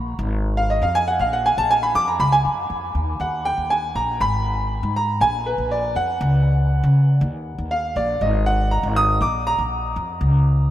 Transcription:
Already playing: upright bass A#1
0.19 upright bass G#1
0.57 grand piano F5
0.70 grand piano D#5
0.82 upright bass F2, grand piano F5
0.95 grand piano G#5
1.08 grand piano F#5
1.19 upright bass A#1, grand piano F5
1.33 grand piano F#5
1.46 grand piano G#5
1.57 upright bass A#1, grand piano A5
1.71 grand piano G#5
1.83 grand piano B5
1.95 upright bass F2, grand piano D6
2.08 grand piano A#5
2.19 upright bass C#2, grand piano B5
2.32 grand piano G#5
2.45 upright bass F#2
2.70 upright bass F2
2.95 upright bass D#2
3.20 upright bass D#2, grand piano F#5
3.45 grand piano G5
3.58 upright bass D#2
3.70 grand piano G#5
3.95 upright bass A#1, grand piano A#5
4.20 upright bass G#1, grand piano B5
4.83 upright bass G#2
4.96 grand piano A#5
5.21 upright bass A#1, grand piano G#5
5.46 grand piano B4
5.58 upright bass A#1
5.71 grand piano D5
5.96 upright bass F2, grand piano F#5
6.21 upright bass C#2
6.83 upright bass C#3
7.21 upright bass D#2
7.58 upright bass D#2
7.71 grand piano F5
7.96 upright bass A#1, grand piano D5
8.21 upright bass G#1, grand piano D#5
8.46 grand piano F#5
8.71 grand piano A#5
8.83 upright bass G#1
8.96 grand piano D#6
9.21 upright bass A#1, grand piano D6
9.47 grand piano A#5
9.58 upright bass A#1
9.96 upright bass F2
10.21 upright bass C#2

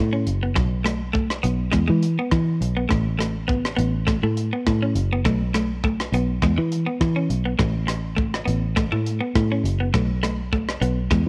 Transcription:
Already playing: fingered electric bass A2
0.13 clean electric guitar C#4
0.27 fingered electric bass F#1, closed hi-hat
0.43 clean electric guitar B3
0.56 fingered electric bass B1, muted clean electric guitar stroke, kick, cross-stick
0.84 clean electric guitar A3, cross-stick, closed hi-hat
1.13 clean electric guitar A3, kick
1.30 cross-stick
1.43 fingered electric bass B1, clean electric guitar B3, closed hi-hat
1.72 fingered electric bass E2, clean electric guitar G#3, kick, cross-stick
1.88 fingered electric bass E3, clean electric guitar G#3
2.03 closed hi-hat
2.19 clean electric guitar B3
2.31 fingered electric bass E3, kick, cross-stick
2.61 fingered electric bass B1, closed hi-hat
2.77 clean electric guitar B3
2.89 fingered electric bass A1, clean electric guitar A3, kick, cross-stick
3.19 clean electric guitar A3, cross-stick, closed hi-hat
3.48 clean electric guitar B3, kick
3.65 cross-stick
3.76 fingered electric bass A1, clean electric guitar B3, closed hi-hat
4.07 clean electric guitar A3, kick, cross-stick
4.23 fingered electric bass A2, clean electric guitar A3
4.37 closed hi-hat
4.53 clean electric guitar B3
4.66 fingered electric bass A2, kick, cross-stick
4.82 clean electric guitar C#4
4.95 fingered electric bass F#1, closed hi-hat
5.12 clean electric guitar B3
5.25 fingered electric bass B1, clean electric guitar A3, kick, cross-stick
5.54 clean electric guitar A3, cross-stick, closed hi-hat
5.84 clean electric guitar A3, kick
6.00 cross-stick
6.12 fingered electric bass B1, clean electric guitar B3, closed hi-hat
6.42 fingered electric bass E2, clean electric guitar G#3, kick, cross-stick
6.58 clean electric guitar E3, fingered electric bass E3
6.72 closed hi-hat
6.86 clean electric guitar B3
7.01 fingered electric bass E3, kick, cross-stick
7.16 clean electric guitar C#4
7.30 fingered electric bass B1, closed hi-hat
7.45 clean electric guitar B3
7.59 fingered electric bass A1, clean electric guitar A3, kick, cross-stick
7.87 muted clean electric guitar stroke, cross-stick, closed hi-hat
8.17 clean electric guitar A3, kick
8.34 cross-stick
8.46 fingered electric bass A1, clean electric guitar B3, closed hi-hat
8.76 clean electric guitar A3, kick, cross-stick
8.92 fingered electric bass A2, clean electric guitar A3
9.06 closed hi-hat
9.21 clean electric guitar B3
9.35 fingered electric bass A2, kick, cross-stick
9.52 clean electric guitar C#4
9.64 fingered electric bass F#1, closed hi-hat
9.80 clean electric guitar B3
9.94 fingered electric bass B1, clean electric guitar A3, kick, cross-stick
10.23 clean electric guitar A3, cross-stick, closed hi-hat
10.53 clean electric guitar A3, kick
10.69 cross-stick
10.81 fingered electric bass B1, clean electric guitar B3, closed hi-hat
11.11 fingered electric bass E2, clean electric guitar G#3, kick, cross-stick

